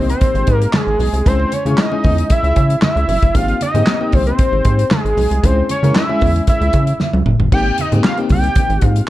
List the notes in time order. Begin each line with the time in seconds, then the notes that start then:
Already playing: C2 A#3 C4 D#4 G4
0.09 C5, closed hi-hat
0.21 kick, closed hi-hat
0.35 G#1, closed hi-hat, muted conga
0.47 G#2, kick, closed hi-hat
0.56 A#4
0.62 closed hi-hat
0.73 G#4, snare, clap, muted conga, high conga
0.87 G#1, muted conga
0.99 B1, open hi-hat, low conga
1.13 C2, closed hi-hat
1.26 C#2 G#3 C#4 E4 G#4 C5, kick, closed hi-hat, muted conga, low conga
1.40 muted conga
1.52 C#5, closed hi-hat, high conga
1.66 C#3 G#3 C#4 E4 G#4, closed hi-hat, high conga
1.78 D#5, snare, clap, muted conga
1.92 G#3 C#4 E4 G#4, muted conga
2.04 E2, kick, open hi-hat, high conga
2.18 closed hi-hat
2.30 E5, kick, closed hi-hat, muted conga
2.44 C#2, closed hi-hat
2.56 C#3, kick, closed hi-hat
2.70 closed hi-hat
2.82 E5, snare, clap, muted conga, high conga
2.96 C#2, closed hi-hat
3.08 F#1, open hi-hat, low conga
3.22 G1, kick, closed hi-hat
3.34 G#1 A#3 C4 D#4 G4 F5, kick, closed hi-hat, low conga
3.48 closed hi-hat, muted conga
3.61 D#5, closed hi-hat, high conga
3.74 G#2 A#3 C4 D#4 G4, closed hi-hat, high conga
3.87 snare, clap, muted conga
4.01 A#3 C4 D#4 G4, muted conga
4.12 C2 C5, kick, open hi-hat, high conga
4.27 C5, closed hi-hat
4.39 kick, closed hi-hat
4.53 G#1, muted conga
4.65 G#2, kick, closed hi-hat
4.79 closed hi-hat
4.91 G#4, snare, clap, muted conga, high conga
5.05 G#1, closed hi-hat, muted conga
5.17 B1, open hi-hat, low conga
5.31 C2, closed hi-hat
5.43 C#2 G#3 C#4 E4 G#4 C5, kick, closed hi-hat, low conga
5.69 C#5, closed hi-hat, high conga
5.83 C#3 G#3 C#4 E4 A#4, closed hi-hat, high conga
5.95 E5, snare, clap, muted conga
6.09 G#3 C#4 E4 G#4, muted conga
6.21 E2, kick, open hi-hat, high conga, low conga
6.36 closed hi-hat
6.47 E5, kick, closed hi-hat, muted conga
6.61 C#2, closed hi-hat, muted conga
6.73 C#3, kick, closed hi-hat
6.87 closed hi-hat
7.00 snare, high conga
7.13 C#2, high tom, muted conga
7.26 F#1, mid tom, low conga
7.39 G1, floor tom
7.52 G#1 A#3 C4 D#4 G4 G5, kick, crash, low conga
7.78 D#5, closed hi-hat, high conga
7.92 G#2 A#3 C4 D#4 G4, closed hi-hat, high conga
8.04 F5, snare, clap
8.17 A#3 C4 D#4 G4, closed hi-hat
8.29 C2 G5, kick, open hi-hat, high conga
8.44 closed hi-hat
8.56 kick, closed hi-hat, muted conga
8.70 G#1, closed hi-hat, muted conga
8.81 G#2, kick, closed hi-hat
8.86 F5
8.96 closed hi-hat